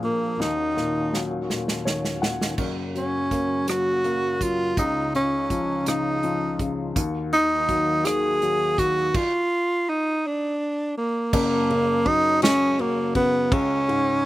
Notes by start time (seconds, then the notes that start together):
Already playing: A#2 F3 D4 G#4
0.03 A#2 A#3
0.37 D#2 D#3 C#4 F#4, snare
0.41 D#4
0.76 A#2, snare
1.13 F#3, snare
1.49 A#2, snare
1.68 snare
1.85 D#3 C#5, snare
2.05 snare
2.22 A#2 F#5, snare
2.41 snare
2.57 F#2 C#3 F#3 A#3, kick, crash
2.95 F#3 C#4, closed hi-hat
3.31 A#3, kick, closed hi-hat
3.68 F#3 F#4, cross-stick, closed hi-hat
4.04 A#3, closed hi-hat
4.41 F#3 F4, kick, closed hi-hat
4.77 C#2 C#3 D#4 F4, kick, closed hi-hat
5.15 C#3 C#4, closed hi-hat
5.50 F3, kick, closed hi-hat
5.86 C#3 D#4, cross-stick, closed hi-hat
6.23 F3, closed hi-hat
6.59 C#3, kick, closed hi-hat
6.95 D#2 D#3 A#3 F#4, kick, closed hi-hat
7.33 D#3 D#4, closed hi-hat
7.69 F#3, kick, closed hi-hat
8.05 D#3 G#4, cross-stick, closed hi-hat
8.42 F#3, closed hi-hat
8.78 D#3 F#4, kick, closed hi-hat
9.14 F4, kick, crash
9.89 D#4
10.27 D4
10.98 A#3
11.33 F#1 F#2 A#3, kick, crash
11.70 C#3, ride
12.06 F#3 D#4, kick, ride
12.42 C#3 C#4, snare, ride
12.79 F#3 A#3, ride
13.15 C#3 B3, kick, ride
13.52 C#2 C#4, kick, ride
13.88 G#2, ride